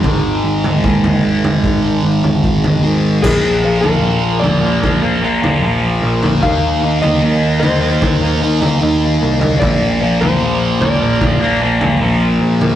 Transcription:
<<
  \new Staff \with { instrumentName = "Electric slide guitar" } { \time 4/4 \key bes \mixolydian \tempo 4 = 75 r1 | aes'8. bes'8. d''4. r4 | f''8. ees''8. c''4. r4 | d''8. c''8. d''4. r4 | }
  \new Staff \with { instrumentName = "Distorted electric guitar" } { \clef bass \time 4/4 \key bes \mixolydian <aes, ees aes>2.~ <aes, ees aes>8 <aes, ees aes>8 | <bes, f bes>8 <bes, f bes>16 <f bes>16 <bes, f bes>8 <bes, f bes>16 <f bes>8 <f bes>16 <bes, f bes>16 <f bes>16 <bes, f bes>8. <f bes>16 | <ees bes ees'>8 <ees bes ees'>16 <bes ees'>16 <ees bes ees'>8 <ees bes ees'>16 <bes ees'>8 <bes ees'>16 <ees bes ees'>16 <bes ees'>16 <ees bes ees'>8. <bes ees'>16 | <bes, f bes>8 <bes, f bes>16 <f bes>16 <bes, f bes>8 <bes, f bes>16 <f bes>8 <f bes>16 <bes, f bes>16 <f bes>16 <bes, f bes>8. <f bes>16 | }
  \new Staff \with { instrumentName = "Picked electric bass" } { \clef bass \time 4/4 \key bes \mixolydian aes,,8 aes,,8 ees,8 aes,,8 aes,,8 aes,,8 aes,,8 aes,,8 | bes,,4 bes,,8 bes,,8 bes,,4 bes,,8 bes,,8 | ees,4 ees,8 ees,8 ees,4 ees,8 c,8 | bes,,4 bes,,8 bes,,8 bes,,4 bes,,8 bes,,8 | }
  \new DrumStaff \with { instrumentName = "Drums" } \drummode { \time 4/4 <bd tomfh>8. tomfh16 bd16 tomfh8 tomfh16 bd8. tomfh16 bd16 tomfh8. | <cymc bd tomfh>8. tomfh16 r8 tomfh8 <bd tomfh>8. tomfh16 r8. tomfh16 | <bd tomfh>8. tomfh16 r8 tomfh8 <bd tomfh>8. tomfh16 r8. tomfh16 | <bd tomfh>8. tomfh16 r8 tomfh8 <bd tomfh>8. tomfh16 r8. tomfh16 | }
>>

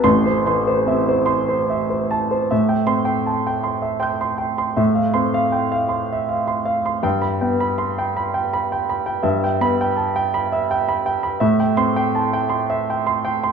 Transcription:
<<
  \new Staff \with { instrumentName = "Grand piano" } { \time 6/8 \key a \minor \tempo 4. = 54 << { c'''8 r2 r8 | r8 c'''8 r4 <c''' g'''>4 | r8 c'''8 r2 | r4 c'''16 r4. r16 |
r8 b''8 r2 | r8 c'''8 r2 | } \\ { r16 c''16 c'''16 c''16 e''16 c''16 c'''16 c''16 e''16 c''16 a''16 c''16 | e''16 g''8 g''16 a''16 g''16 c'''16 e''16 g''16 c'''16 g''16 c'''16 | e''16 f''8 f''16 g''16 f''16 c'''16 e''16 f''16 c'''16 f''16 c'''16 | g''16 b''16 g''16 b''8 g''16 b''16 g''16 b''16 g''16 b''16 g''16 |
e''16 g''8 g''16 a''16 g''16 b''16 e''16 g''16 b''16 g''16 b''16 | e''16 g''8 g''16 a''16 g''16 c'''16 e''16 g''16 c'''16 g''16 c'''16 | } >> }
  \new Staff \with { instrumentName = "Grand piano" } { \clef bass \time 6/8 \key a \minor <a,, a,>8 e8 c'4 r4 | a,8 c'4 r4. | a,8 c'4 r4. | g,8 b4 r4. |
g,8 b4 r4. | a,8 c'4 r4. | }
>>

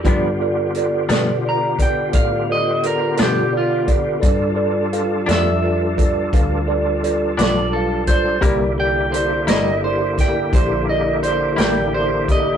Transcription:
<<
  \new Staff \with { instrumentName = "Clean electric guitar" } { \time 12/8 \key g \dorian \tempo 4. = 57 r2 bes''8 g''8 f''8 ees''8 bes'8 g'8 f'8 r8 | r4. e''2. d''8 a'8 c''8 | r8 g''8 c''8 ees''8 c''8 g''8 c''8 ees''8 c''8 g''8 c''8 ees''8 | }
  \new Staff \with { instrumentName = "Tine electric piano" } { \time 12/8 \key g \dorian <f' a' b' d''>8 <f' a' b' d''>8 <f' a' b' d''>8 <f' a' b' d''>8 <f' a' b' d''>8 <f' a' b' d''>8 <f' a' b' d''>8 <f' a' b' d''>8 <f' a' b' d''>8 <f' a' b' d''>8 <f' a' b' d''>8 <f' a' b' d''>8 | <f' a' b' d''>8 <f' a' b' d''>8 <f' a' b' f''>8 <f' a' b' d''>8 <f' a' b' d''>8 <f' a' b' d''>8 <f' a' b' f''>8 <f' a' b' d''>8 <f' a' b' d''>8 <f' a' b' d''>8 <f' a' b' f''>8 <f' a' b' d''>8 | <e' g' bes' d''>8 <e' g' bes' d''>8 <e' g' bes' d''>8 <e' g' bes' d''>8 <e' g' bes' d''>8 <e' g' bes' d''>8 <e' g' bes' d''>8 <e' g' bes' d''>8 <e' g' bes' d''>8 <e' g' bes' d''>8 <e' g' bes' d''>8 <e' g' bes' d''>8 | }
  \new Staff \with { instrumentName = "Tonewheel organ" } { \time 12/8 \key g \dorian <d b f' g'>1. | <g d' f' a'>1. | <d bes e' g'>1. | }
  \new Staff \with { instrumentName = "Clean electric guitar" } { \clef bass \time 12/8 \key g \dorian <g, f b d'>8 r4 <g, f b d'>8 r2 r8 <g, f b d'>8 r4 | r4. <g, f b d'>8 r2 r8 <g, f b d'>8 r4 | <c g bes e'>8 r4 <c g bes e'>8 r2 r8 <c g bes e'>8 r4 | }
  \new Staff \with { instrumentName = "Fingered electric bass" } { \clef bass \time 12/8 \key g \dorian g,4. b,4. a,4. b,4. | g,4. f,4. d,4. b,,4. | c,4. g,,4. bes,,4. a,,4. | }
  \new DrumStaff \with { instrumentName = "Drums" } \drummode { \time 12/8 <hh bd>4 hh8 <hh sn>4 <hh bd>8 <hh bd>4 hh8 <hh sn>4 <hh bd>8 | <hh bd>4 hh8 <hh sn>4 <hh bd>8 <hh bd>4 hh8 <hh sn>4 <hh bd>8 | <hh bd>4 hh8 <hh sn>4 <hh bd sn>8 <hh bd>4 hh8 <hh sn>4 <hh bd>8 | }
>>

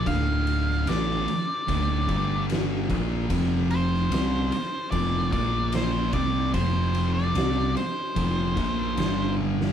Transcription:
<<
  \new Staff \with { instrumentName = "Lead electric guitar" } { \time 4/4 \key f \major \tempo 4 = 74 f''4 d''2 r4 | r8 c''4. d''8 d''8 c''8 d''8 | c''8. d''8. c''2 r8 | }
  \new Staff \with { instrumentName = "Distorted electric guitar" } { \clef bass \time 4/4 \key f \major <d, a, d>4 <a, e a>8 r8 <d, a, d>8 <g, d g>4 <bes, f bes>8 | <f, c f>4 <c g c'>8 r8 <f, c f>8 <bes, f bes>4 <c g c'>8 | <f, c f>4 <c g c'>8 r8 <f, c f>8 <bes, f bes>8 <g, d g>4 | }
  \new Staff \with { instrumentName = "Distorted electric guitar" } { \clef bass \time 4/4 \key f \major <d, a, d>4 <a, e a>8 r8 <d, a, d>8 <g, d g>4 <bes, f bes>8 | <f, c f>4 <c g c'>8 r8 <f, c f>8 <bes, f bes>4 <c g c'>8 | <f, c f>4 <c g c'>8 r8 <f, c f>8 <bes, f bes>8 <g, d g>4 | }
  \new Staff \with { instrumentName = "Picked electric bass" } { \clef bass \time 4/4 \key f \major d,,4 a,,8 r8 d,,8 g,,4 bes,,8 | f,,4 c,8 r8 f,,8 bes,,4 c,8 | f,,4 c,8 r8 f,,8 bes,,8 g,,4 | }
  \new DrumStaff \with { instrumentName = "Drums" } \drummode { \time 4/4 <bd cymr>8 cymr16 sn16 <cymr sn>16 sn16 cymr8 <bd cymr>8 <bd cymr>8 <cymr sn>8 <bd cymr>8 | <bd cymr>8 cymr16 sn16 <cymr sn>8 cymr8 <bd cymr>8 <bd cymr>8 <cymr sn>8 <bd cymr>8 | <bd cymr>8 cymr16 sn16 <cymr sn>16 sn16 cymr8 <bd cymr>8 <bd cymr>8 <cymr sn>8 tommh16 sn16 | }
>>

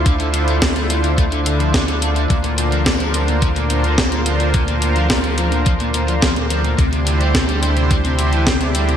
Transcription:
<<
  \new Staff \with { instrumentName = "Analog synth pad" } { \time 4/4 \key bes \lydian \tempo 4 = 107 << { <e' f' c''>1 | <f' bes' c''>1~ | <f' bes' c''>1 | <e' g' c''>1 | } \\ { <d d'>1~ | <d d'>1~ | <d d'>1 | <d d'>1 | } >> }
  \new Staff \with { instrumentName = "Overdriven electric guitar" } { \clef bass \time 4/4 \key bes \lydian d16 d16 d16 a16 d16 a16 a16 d16 a16 d16 d16 f16 d16 d16 a16 d16 | bes,16 bes,16 bes,16 f16 bes,16 f16 f16 bes,16 f16 bes,16 bes,16 d16 bes,16 bes,16 f16 bes,16 | bes,16 bes,16 bes,16 f16 bes,16 f16 f16 bes,16 f16 bes,16 bes,16 f16 f16 bes,16 f16 bes,16 | c16 c16 c16 g16 c16 g16 g16 c16 g16 c16 c16 e16 c16 c16 g16 c16 | }
  \new Staff \with { instrumentName = "Analog synth bass" } { \clef bass \time 4/4 \key bes \lydian d,1 | d,1~ | d,1 | d,1 | }
  \new DrumStaff \with { instrumentName = "Drums" } \drummode { \time 4/4 <hh bd>16 hh16 hh16 hh16 <hh bd sn>16 hh16 hh16 hh16 <hh bd>16 hh16 hh16 hh16 <hh bd sn>16 hh16 hh16 hh16 | <hh bd>16 hh16 hh16 hh16 <hh bd sn>16 hh16 hh16 hh16 <hh bd>16 hh16 hh16 hh16 <hh bd sn>16 hh16 hh16 hh16 | <hh bd>16 hh16 hh16 hh16 <hh bd sn>16 hh16 hh16 hh16 <hh bd>16 hh16 hh16 hh16 <hh bd sn>16 hh16 hh16 hh16 | <hh bd>16 hh16 hh16 hh16 <hh bd sn>16 hh16 hh16 hh16 <hh bd>16 hh16 hh16 hh16 <hh bd sn>16 hh16 hh16 hh16 | }
>>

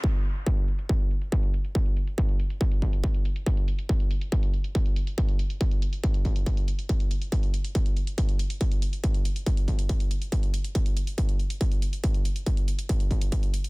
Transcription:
\new DrumStaff \with { instrumentName = "Drums" } \drummode { \time 4/4 \tempo 4 = 140 <cymc bd>16 hh16 hh16 hh16 <hh bd>16 hh16 hh16 hh16 <hh bd>16 hh16 hh16 hh16 <hh bd>16 hh16 hh16 hh16 | <hh bd>16 hh16 hh16 hh16 <hh bd>16 hh16 hh16 hh16 <hh bd>16 hh16 <hh bd>16 hh16 <hh bd>16 hh16 hh16 hh16 | <hh bd>16 hh16 hh16 hh16 <hh bd>16 hh16 hh16 hh16 <hh bd>16 hh16 hh16 hh16 <hh bd>16 hh16 hh16 hh16 | <hh bd>16 hh16 hh16 hh16 <hh bd>16 hh16 hh16 hh16 <hh bd>16 hh16 <hh bd>16 hh16 <hh bd>16 hh16 hh16 hh16 |
<hh bd>16 hh16 hh16 hh16 <hh bd>16 hh16 hh16 hh16 <hh bd>16 hh16 hh16 hh16 <hh bd>16 hh16 hh16 hh16 | <hh bd>16 hh16 hh16 hh16 <hh bd>16 hh16 hh16 hh16 <hh bd>16 hh16 <hh bd>16 hh16 <hh bd>16 hh16 hh16 hh16 | <hh bd>16 hh16 hh16 hh16 <hh bd>16 hh16 hh16 hh16 <hh bd>16 hh16 hh16 hh16 <hh bd>16 hh16 hh16 hh16 | <hh bd>16 hh16 hh16 hh16 <hh bd>16 hh16 hh16 hh16 <hh bd>16 hh16 <hh bd>16 hh16 <hh bd>16 hh16 hh16 hh16 | }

